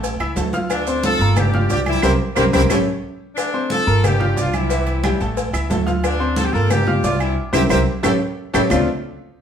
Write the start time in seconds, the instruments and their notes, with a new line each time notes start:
Already playing: upright bass A1, grand piano A3 A4 A5
0.03 cowbell, high conga, low agogo, maracas
0.19 upright bass C#2, grand piano E4 E5 E6, high conga, low agogo, claves
0.36 upright bass D2, grand piano A3 A4 A5, cowbell, high conga, low timbale, maracas
0.53 grand piano F4 F5 F6, cowbell, high conga, maracas
0.70 horn section A3 D4, cowbell, high conga, low agogo, claves, maracas
0.87 grand piano C4 C5 C6, high conga, maracas
1.03 horn section F4 A4, cowbell, high conga, low timbale, low agogo, maracas
1.19 upright bass G1, grand piano A#3 A#4 A#5, high conga, maracas
1.36 horn section D4 G4, cowbell, high conga, low conga, low agogo, claves, maracas
1.54 grand piano F4 F5 F6, high conga, low conga
1.70 upright bass C2, horn section D4 G4, grand piano D4 D5 D6, cowbell, high conga, low timbale, low agogo, maracas
1.86 horn section C4 E4, high conga, low agogo, claves, maracas
2.02 upright bass C2, horn section A#3 C4 E4, grand piano G4 A#4 C5, cowbell, high conga, high timbale, claves, maracas
2.35 upright bass C2, horn section A#3 C4 E4, grand piano G4 A#4 C5, cowbell, high conga, high timbale, claves, maracas
2.52 upright bass C2, horn section A#3 C4 E4, grand piano G4 A#4 C5, cowbell, high conga, high timbale, claves, maracas
2.68 upright bass A1, horn section A3 C#4 E4, grand piano G4 A4 C#5, cowbell, high conga, high timbale, claves, maracas
3.35 horn section A3 D4, cowbell, high conga, low agogo, claves, maracas
3.53 grand piano C4 C5 C6, high conga
3.70 horn section F4 A4, cowbell, high conga, low timbale, low agogo, maracas
3.87 upright bass G1, grand piano A#3 A#4 A#5, high conga, maracas
4.04 horn section D4 G4, cowbell, high conga, low conga, low agogo, claves, maracas
4.20 grand piano F4 F5 F6, high conga, low conga
4.36 upright bass C2, grand piano D4 D5 D6, horn section D4 F4, cowbell, high conga, low timbale, low agogo, maracas
4.53 horn section C4 E4, high conga, low agogo, claves, maracas
4.69 grand piano E3 E4 E5, cowbell, high conga, maracas
4.87 high conga, low agogo
5.03 grand piano G3 G4 G5, cowbell, high conga, low timbale, low agogo, claves, maracas
5.20 upright bass A1, grand piano A3 A4 A5, cowbell, high conga, maracas
5.37 cowbell, high conga, low agogo, maracas
5.53 upright bass C#2, grand piano E4 E5 E6, high conga, low agogo, claves, maracas
5.70 upright bass D2, grand piano A3 A4 A5, cowbell, high conga, low timbale, maracas
5.87 grand piano F4 F5 F6, cowbell, high conga, maracas
6.04 horn section A3 D4, cowbell, high conga, low agogo, claves, maracas
6.20 grand piano C4 C5 C6, high conga
6.36 horn section F4 A4, cowbell, high conga, low timbale, low agogo, maracas
6.44 horn section G4
6.52 upright bass G1, grand piano A#3 A#4 A#5, horn section F4 A4, high conga, maracas
6.70 horn section D4 G4, cowbell, high conga, low conga, low agogo, claves, maracas
6.87 grand piano F4 F5 F6, high conga, low conga
7.03 upright bass C2, grand piano D4 D5 D6, horn section D4 F4, cowbell, high conga, low timbale, low agogo, maracas
7.20 horn section C4 E4, low agogo, claves, maracas
7.53 upright bass C2, horn section C4 E4 G4, grand piano G4 A#4 C5, cowbell, high conga, high timbale, claves, maracas
7.69 upright bass C2, horn section C4 E4 G4, grand piano G4 A#4 C5, cowbell, high conga, high timbale, claves, maracas
8.03 upright bass A1, horn section E4 G4 A4, grand piano G4 A4 C#5, cowbell, high conga, high timbale, claves, maracas
8.53 upright bass A1, horn section E4 G4 A4, grand piano G4 A4 C#5, cowbell, high conga, high timbale, claves, maracas
8.70 upright bass D2, grand piano D3 A3 C4 D4 F4 A4, horn section F4, low bongo, low conga, low timbale, claves, maracas